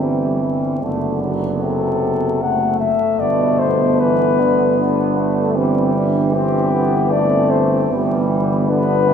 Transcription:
0, 0, Header, 1, 6, 480
1, 0, Start_track
1, 0, Key_signature, 1, "major"
1, 0, Tempo, 797872
1, 486, Time_signature, 3, 2, 24, 8
1, 2400, Tempo, 783290
1, 5554, End_track
2, 0, Start_track
2, 0, Title_t, "Flugelhorn"
2, 0, Program_c, 0, 56
2, 0, Note_on_c, 0, 67, 45
2, 242, Note_off_c, 0, 67, 0
2, 966, Note_on_c, 0, 69, 49
2, 1457, Note_on_c, 0, 78, 56
2, 1466, Note_off_c, 0, 69, 0
2, 1680, Note_off_c, 0, 78, 0
2, 1683, Note_on_c, 0, 76, 53
2, 1925, Note_on_c, 0, 74, 59
2, 1934, Note_off_c, 0, 76, 0
2, 2161, Note_on_c, 0, 72, 56
2, 2170, Note_off_c, 0, 74, 0
2, 2408, Note_on_c, 0, 71, 56
2, 2417, Note_off_c, 0, 72, 0
2, 3123, Note_off_c, 0, 71, 0
2, 3834, Note_on_c, 0, 67, 65
2, 4316, Note_on_c, 0, 74, 72
2, 4325, Note_off_c, 0, 67, 0
2, 4556, Note_on_c, 0, 72, 56
2, 4565, Note_off_c, 0, 74, 0
2, 4799, Note_off_c, 0, 72, 0
2, 5272, Note_on_c, 0, 71, 69
2, 5554, Note_off_c, 0, 71, 0
2, 5554, End_track
3, 0, Start_track
3, 0, Title_t, "French horn section"
3, 0, Program_c, 1, 60
3, 0, Note_on_c, 1, 60, 31
3, 475, Note_off_c, 1, 60, 0
3, 479, Note_on_c, 1, 59, 37
3, 1426, Note_off_c, 1, 59, 0
3, 1458, Note_on_c, 1, 57, 38
3, 1918, Note_off_c, 1, 57, 0
3, 1927, Note_on_c, 1, 59, 45
3, 3357, Note_on_c, 1, 60, 49
3, 3360, Note_off_c, 1, 59, 0
3, 3593, Note_on_c, 1, 62, 46
3, 3597, Note_off_c, 1, 60, 0
3, 3833, Note_off_c, 1, 62, 0
3, 3840, Note_on_c, 1, 60, 40
3, 4207, Note_off_c, 1, 60, 0
3, 4311, Note_on_c, 1, 60, 43
3, 4788, Note_off_c, 1, 60, 0
3, 4796, Note_on_c, 1, 59, 49
3, 5019, Note_off_c, 1, 59, 0
3, 5026, Note_on_c, 1, 59, 48
3, 5266, Note_on_c, 1, 62, 41
3, 5269, Note_off_c, 1, 59, 0
3, 5554, Note_off_c, 1, 62, 0
3, 5554, End_track
4, 0, Start_track
4, 0, Title_t, "Trombone section"
4, 0, Program_c, 2, 61
4, 2, Note_on_c, 2, 55, 37
4, 238, Note_off_c, 2, 55, 0
4, 245, Note_on_c, 2, 55, 34
4, 482, Note_off_c, 2, 55, 0
4, 494, Note_on_c, 2, 57, 38
4, 731, Note_off_c, 2, 57, 0
4, 733, Note_on_c, 2, 54, 33
4, 1452, Note_off_c, 2, 54, 0
4, 1456, Note_on_c, 2, 57, 38
4, 2775, Note_off_c, 2, 57, 0
4, 2879, Note_on_c, 2, 59, 49
4, 3114, Note_off_c, 2, 59, 0
4, 3117, Note_on_c, 2, 57, 43
4, 3356, Note_off_c, 2, 57, 0
4, 3357, Note_on_c, 2, 55, 44
4, 3834, Note_on_c, 2, 60, 45
4, 3839, Note_off_c, 2, 55, 0
4, 4070, Note_on_c, 2, 59, 49
4, 4079, Note_off_c, 2, 60, 0
4, 4315, Note_on_c, 2, 57, 46
4, 4318, Note_off_c, 2, 59, 0
4, 4800, Note_off_c, 2, 57, 0
4, 4800, Note_on_c, 2, 55, 42
4, 5271, Note_off_c, 2, 55, 0
4, 5273, Note_on_c, 2, 59, 43
4, 5554, Note_off_c, 2, 59, 0
4, 5554, End_track
5, 0, Start_track
5, 0, Title_t, "Euphonium"
5, 0, Program_c, 3, 58
5, 6, Note_on_c, 3, 52, 30
5, 490, Note_off_c, 3, 52, 0
5, 498, Note_on_c, 3, 50, 32
5, 976, Note_on_c, 3, 48, 40
5, 985, Note_off_c, 3, 50, 0
5, 1763, Note_off_c, 3, 48, 0
5, 1934, Note_on_c, 3, 47, 39
5, 2383, Note_off_c, 3, 47, 0
5, 2411, Note_on_c, 3, 52, 50
5, 2648, Note_on_c, 3, 50, 43
5, 2657, Note_off_c, 3, 52, 0
5, 2879, Note_off_c, 3, 50, 0
5, 2883, Note_on_c, 3, 50, 42
5, 3360, Note_on_c, 3, 52, 47
5, 3369, Note_off_c, 3, 50, 0
5, 4795, Note_off_c, 3, 52, 0
5, 4799, Note_on_c, 3, 52, 44
5, 5284, Note_on_c, 3, 50, 57
5, 5293, Note_off_c, 3, 52, 0
5, 5519, Note_on_c, 3, 48, 47
5, 5528, Note_off_c, 3, 50, 0
5, 5554, Note_off_c, 3, 48, 0
5, 5554, End_track
6, 0, Start_track
6, 0, Title_t, "Tuba"
6, 0, Program_c, 4, 58
6, 0, Note_on_c, 4, 31, 33
6, 464, Note_off_c, 4, 31, 0
6, 492, Note_on_c, 4, 30, 38
6, 1739, Note_off_c, 4, 30, 0
6, 1925, Note_on_c, 4, 31, 42
6, 4780, Note_off_c, 4, 31, 0
6, 4801, Note_on_c, 4, 31, 55
6, 5554, Note_off_c, 4, 31, 0
6, 5554, End_track
0, 0, End_of_file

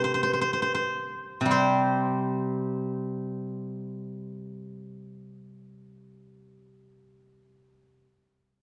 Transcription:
0, 0, Header, 1, 2, 480
1, 0, Start_track
1, 0, Tempo, 953895
1, 217, Tempo, 1079137
1, 697, Time_signature, 2, 2, 24, 8
1, 697, Tempo, 1134216
1, 1177, Tempo, 1090909
1, 2617, Tempo, 1127820
1, 3767, End_track
2, 0, Start_track
2, 0, Title_t, "Guzheng"
2, 0, Program_c, 0, 107
2, 0, Note_on_c, 0, 48, 47
2, 0, Note_on_c, 0, 67, 58
2, 0, Note_on_c, 0, 70, 56
2, 20, Note_on_c, 0, 72, 42
2, 69, Note_off_c, 0, 72, 0
2, 71, Note_on_c, 0, 72, 35
2, 113, Note_off_c, 0, 72, 0
2, 115, Note_on_c, 0, 72, 37
2, 166, Note_off_c, 0, 72, 0
2, 168, Note_on_c, 0, 72, 32
2, 206, Note_off_c, 0, 72, 0
2, 208, Note_on_c, 0, 72, 38
2, 215, Note_off_c, 0, 48, 0
2, 260, Note_off_c, 0, 72, 0
2, 261, Note_on_c, 0, 72, 33
2, 300, Note_off_c, 0, 72, 0
2, 301, Note_on_c, 0, 72, 38
2, 355, Note_off_c, 0, 72, 0
2, 357, Note_on_c, 0, 72, 35
2, 530, Note_off_c, 0, 67, 0
2, 592, Note_off_c, 0, 70, 0
2, 652, Note_on_c, 0, 48, 31
2, 672, Note_on_c, 0, 55, 33
2, 695, Note_on_c, 0, 60, 32
2, 697, Note_off_c, 0, 72, 0
2, 698, Note_on_c, 0, 72, 45
2, 2104, Note_off_c, 0, 72, 0
2, 2910, Note_off_c, 0, 60, 0
2, 3299, Note_off_c, 0, 55, 0
2, 3520, Note_off_c, 0, 48, 0
2, 3767, End_track
0, 0, End_of_file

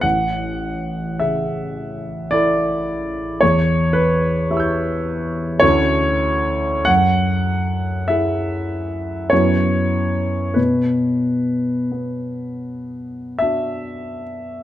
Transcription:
0, 0, Header, 1, 2, 480
1, 0, Start_track
1, 0, Key_signature, 2, "minor"
1, 0, Tempo, 1183432
1, 15, Time_signature, 3, 2, 24, 8
1, 494, Tempo, 1100917
1, 2414, Tempo, 1265823
1, 2894, Tempo, 1212121
1, 3854, Tempo, 1257862
1, 4334, Tempo, 1339286
1, 4814, Tempo, 1477833
1, 5294, Tempo, 1354402
1, 5735, End_track
2, 0, Start_track
2, 0, Title_t, "Grand piano"
2, 0, Program_c, 0, 0
2, 0, Control_c, 0, 64, 127
2, 6, Note_on_c, 0, 78, 77
2, 14, Note_on_c, 0, 33, 40
2, 22, Control_c, 0, 64, 0
2, 104, Control_c, 0, 64, 127
2, 485, Note_on_c, 0, 76, 54
2, 489, Note_off_c, 0, 78, 0
2, 489, Note_on_c, 0, 49, 33
2, 969, Note_on_c, 0, 74, 76
2, 974, Note_off_c, 0, 76, 0
2, 977, Note_on_c, 0, 64, 38
2, 981, Note_on_c, 0, 69, 38
2, 1261, Note_off_c, 0, 49, 0
2, 1436, Note_off_c, 0, 33, 0
2, 1436, Note_off_c, 0, 64, 0
2, 1438, Note_off_c, 0, 69, 0
2, 1448, Note_on_c, 0, 73, 73
2, 1450, Note_off_c, 0, 74, 0
2, 1457, Note_on_c, 0, 40, 43
2, 1460, Control_c, 0, 64, 0
2, 1516, Control_c, 0, 64, 127
2, 1677, Note_on_c, 0, 71, 70
2, 1689, Note_off_c, 0, 73, 0
2, 1927, Note_on_c, 0, 67, 35
2, 1929, Note_on_c, 0, 64, 35
2, 1929, Note_on_c, 0, 76, 28
2, 1938, Note_on_c, 0, 85, 31
2, 1954, Note_on_c, 0, 88, 29
2, 1967, Note_on_c, 0, 91, 27
2, 2395, Note_off_c, 0, 67, 0
2, 2396, Note_off_c, 0, 64, 0
2, 2396, Note_off_c, 0, 76, 0
2, 2397, Note_off_c, 0, 40, 0
2, 2400, Note_off_c, 0, 85, 0
2, 2403, Note_on_c, 0, 73, 86
2, 2405, Note_off_c, 0, 71, 0
2, 2408, Note_off_c, 0, 88, 0
2, 2412, Note_on_c, 0, 57, 38
2, 2412, Note_on_c, 0, 64, 37
2, 2412, Note_on_c, 0, 66, 36
2, 2413, Note_on_c, 0, 38, 49
2, 2415, Note_off_c, 0, 91, 0
2, 2417, Note_on_c, 0, 61, 38
2, 2420, Control_c, 0, 64, 0
2, 2479, Control_c, 0, 64, 127
2, 2878, Note_off_c, 0, 57, 0
2, 2879, Note_off_c, 0, 38, 0
2, 2879, Note_on_c, 0, 78, 88
2, 2880, Note_off_c, 0, 61, 0
2, 2880, Note_off_c, 0, 64, 0
2, 2880, Note_off_c, 0, 66, 0
2, 2888, Note_on_c, 0, 42, 44
2, 2889, Note_off_c, 0, 73, 0
2, 2900, Control_c, 0, 64, 0
2, 2956, Control_c, 0, 64, 127
2, 3363, Note_off_c, 0, 78, 0
2, 3365, Note_on_c, 0, 76, 66
2, 3371, Note_on_c, 0, 64, 29
2, 3375, Note_on_c, 0, 68, 33
2, 3835, Note_off_c, 0, 42, 0
2, 3839, Note_off_c, 0, 64, 0
2, 3840, Note_off_c, 0, 68, 0
2, 3848, Note_on_c, 0, 73, 70
2, 3851, Note_off_c, 0, 76, 0
2, 3857, Note_on_c, 0, 59, 32
2, 3859, Note_on_c, 0, 42, 42
2, 3859, Note_on_c, 0, 64, 32
2, 3859, Note_on_c, 0, 66, 33
2, 3860, Note_on_c, 0, 61, 31
2, 3861, Control_c, 0, 64, 0
2, 3929, Control_c, 0, 64, 127
2, 4321, Note_off_c, 0, 59, 0
2, 4322, Note_off_c, 0, 42, 0
2, 4322, Note_off_c, 0, 61, 0
2, 4323, Note_on_c, 0, 71, 55
2, 4325, Note_off_c, 0, 64, 0
2, 4325, Note_off_c, 0, 66, 0
2, 4331, Note_on_c, 0, 47, 40
2, 4332, Note_off_c, 0, 73, 0
2, 4341, Control_c, 0, 64, 0
2, 4416, Control_c, 0, 64, 127
2, 4816, Note_on_c, 0, 59, 26
2, 5290, Note_off_c, 0, 71, 0
2, 5294, Note_on_c, 0, 76, 64
2, 5306, Note_on_c, 0, 62, 29
2, 5307, Note_on_c, 0, 66, 29
2, 5588, Note_off_c, 0, 59, 0
2, 5735, Note_off_c, 0, 47, 0
2, 5735, Note_off_c, 0, 62, 0
2, 5735, Note_off_c, 0, 66, 0
2, 5735, Note_off_c, 0, 76, 0
2, 5735, End_track
0, 0, End_of_file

